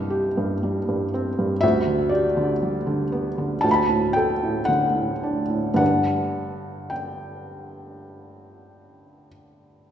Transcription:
felt piano
Already playing: C2 G2 D#5
0.10 G4
0.37 G2
0.63 G3
0.89 G2
1.14 C4
1.39 G2
1.61 D2 E5
1.87 D3
2.09 G4 D5
2.37 D3
2.62 G3
2.87 D3
3.12 B3
3.38 D3
3.61 D2 A5
3.71 A5 B5
3.89 A2
4.13 A4 G5
4.43 A2
4.65 D3 F#5
4.96 A2
5.23 D4
5.50 A2
5.74 G2 D3 D4 B4 F#5
6.90 G5

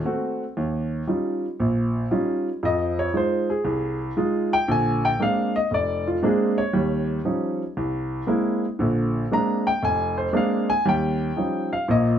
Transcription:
grand piano
0.05 A3 C4 F#4
0.57 D#2
1.07 G3 C#4 D#4 F4
1.60 A#1
2.11 G3 C#4 D#4 F4
2.63 F2 F3 D#5
2.99 C#5
3.14 G#3 D#4 F4 C5
3.50 G#4
3.65 C2
4.17 G#3 D#4 F4
4.53 G5
4.68 A#1 D3 G#5
5.05 G5
5.20 G#3 A#3 C4 D4 F5
5.56 D#5
5.71 F1 D5
6.07 F4
6.23 G#3 A#3 C4 D4 G#4
6.58 C#5
6.73 D#2 G3
7.25 F3 G3 C#4 D#4
7.77 C2
8.27 G#3 A#3 C4 E4
8.79 A#1 D3
9.31 G#3 A#3 C4 D4 A#5
9.67 G5
9.83 F1 G#5
10.18 C5
10.33 G#3 A#3 C4 D4 F5
10.70 G#5
10.85 D#2 G3 G5
11.37 F3 G3 C#4 D#4
11.73 F5
11.88 A#1 A#2 D#5

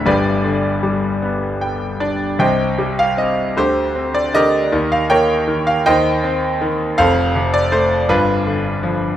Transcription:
grand piano
0.06 G1 G2 G4 B4 D5
0.44 D3
0.83 G3
1.22 B3
1.61 G5
2.00 D4 D5
2.39 C2 C3 C5 D#5 G5
2.79 G3
2.99 F5
3.17 C4 D#5
3.57 D2 D3 G4 C5
3.95 C4
4.15 D5
4.34 D3 G4 A#4 D#5
4.72 D#2 D#3
4.92 F5
5.10 A#3 A#4 C#5 G5
5.47 D#3
5.67 F5
5.86 D#2 D#3 C5 D#5 G5
6.24 C4
6.61 D#3
6.98 F1 F2 A4 C5 F5
7.35 C3
7.54 D5
7.72 A3 C5
8.09 G1 G2 D4 F4 B4
8.46 D3
8.83 F3

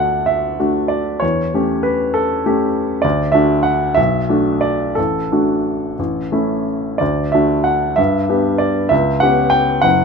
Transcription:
grand piano
Already playing: D2 A3 D4 F#4 D5 E5 F#5
0.26 E5
0.59 A3 D4 F#4
0.88 D5
1.20 E2 C#5
1.54 A3 C#4 G4
1.83 B4
2.14 A4
2.46 A3 C#4 G4
3.02 D2 D5
3.32 A3 D4 F#4 E5
3.63 F#5
3.95 B1 E5
4.29 A3 D4 F#4
4.61 D5
4.95 A1 A4
5.32 A3 D4 F#4
5.99 A1
6.32 A3 C#4 E4
6.98 D2 D5
7.32 A3 D4 F#4 E5
7.64 F#5
7.96 G2 E5
8.29 B3 D4 G4
8.58 D5
8.89 C#2 E5
9.20 B3 C#4 G4 F#5
9.50 G5
9.82 F#1 F#5

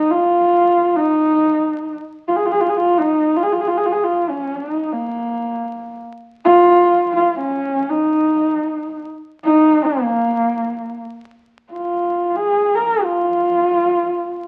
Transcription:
horsehead fiddle
Already playing: D#4
0.11 F4
0.96 D#4
2.28 F4
2.36 G#4
2.46 F4
2.52 G#4
2.61 F4
2.69 G#4
2.77 F4
2.98 D#4
3.36 F4
3.43 G#4
3.52 F4
3.61 G#4
3.67 F4
3.77 G#4
3.85 F4
3.92 G#4
4.03 F4
4.29 C#4
4.56 D#4
4.92 A#3
6.45 F4
7.16 F4
7.39 C#4
7.89 D#4
9.45 D#4
9.85 A#3
11.72 F4
12.36 G#4
12.75 A#4
13.03 F4

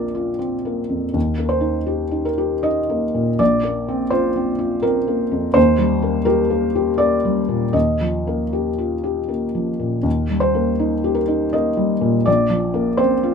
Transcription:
felt piano
Already playing: A#1 A#3 C4 F4 A#4 D5
0.15 F4
0.39 C4
0.65 A#3
0.89 F2
1.14 D#2
1.38 A#3
1.49 C5
1.61 D#4
1.86 G4
2.11 D#4
2.25 A#4
2.38 G4
2.63 D#4 D#5
2.89 A#3
3.15 A#2
3.39 A#1 D5
3.63 A#3
3.88 C4
4.10 F4 C5
4.36 C4
4.59 F4
4.82 C4 A#4
5.08 A#3
5.31 F2
5.54 D#2 C5
5.78 G3
6.02 A#3
6.25 G4 A#4
6.50 A#3
6.75 G4
6.98 A#3 D5
7.25 G3
7.49 A#2
7.73 D#2 D#5
8.01 F3
8.27 A#3
8.53 G4
8.78 F4
9.04 G4
9.28 A#3
9.55 F3
9.80 A#2
10.03 D#2
10.30 G3
10.40 C5
10.55 A#3
10.79 D#4
11.04 G4
11.14 A#4
11.28 D#4
11.53 A#3 D#5
11.77 G3
12.01 A#2
12.26 A#1 D5
12.50 F3
12.74 A#3
12.97 C4 C5
13.23 F4

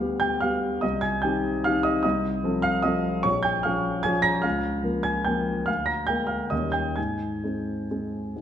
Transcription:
grand piano
Already playing: D2 F5 F6
0.00 G3 B3 G4
0.20 G5 G6
0.41 G3 B3 G4 F5 F6
0.81 C2 D#5 D#6
1.01 G#5 G#6
1.22 D#3 C4 G4 G5 G6
1.64 D#3 C4 G4 F5 F6
1.83 D#5 D#6
2.03 C2 D#5 D#6
2.44 F3 C4 A4
2.62 F5 F6
2.82 F3 C4 A4 D#5 D#6
3.23 A#1 C#5 C#6
3.43 G5 G6
3.63 F3 C#4 G#4 F5 F6
4.03 F3 C#4 G#4 G#5 G#6
4.22 A#5 A#6
4.42 C#2 F5 F6
4.83 F3 A#3 A#4
5.03 G#5 G#6
5.25 F3 A#3 A#4 G5 G6
5.66 D2 F5 F6
5.86 A#5 A#6
6.07 G#3 A#3 A#4 G5 G6
6.27 F5 F6
6.50 D#2 G3 C#4 A#4 D#5 D#6
6.72 G5 G6
6.96 G#2 G#5 G#6
7.44 G#3 C4 G#4
7.91 G#3 C4 G#4
8.36 G#2

